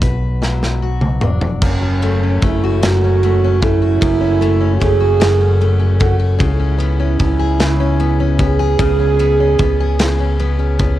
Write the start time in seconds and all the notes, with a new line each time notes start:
Already playing: B1 B2 F#4
0.02 B4, kick, closed hi-hat
0.42 F#3, snare
0.63 snare
0.82 F#4
1.01 mid tom
1.21 E1 D4, mid tom
1.41 floor tom
1.62 F#1 F#2 C#4, kick, crash
1.82 C#4
2.02 A3, ride
2.23 C#4
2.42 F#1 A3 E4, kick, ride
2.64 F#4
2.82 F#2 F#4, snare, ride
3.04 C#4
3.23 A3, ride
3.44 C#4
3.62 A3 E4, kick, ride
3.82 F#4
4.01 F#1 F#2, kick, ride
4.21 C#4
4.41 A3, ride
4.61 C#4
4.80 F#1 A3 G#4, kick, ride
5.00 F#4
5.20 F#2, snare, ride
5.41 C#4
5.61 A3, ride
5.79 C#4
5.99 A3 F#4, kick, ride
6.19 F#4
6.39 C#2 C#3 E4, kick, ride
6.59 C#4
6.78 B3, ride
7.00 C#4
7.19 C#2 B3, kick, ride
7.39 G#4
7.59 C#3, snare, ride
7.80 C#4
8.00 B3, ride
8.20 C#4
8.39 B3 G#4, kick, ride
8.59 G#4
8.79 C#2 C#3, kick, ride
8.99 C#4
9.19 B3, ride
9.40 C#4
9.59 C#2 B3, kick, ride
9.80 G#4
9.99 C#3, snare, ride
10.20 C#4
10.39 B3, ride
10.59 C#4
10.79 B3, kick, ride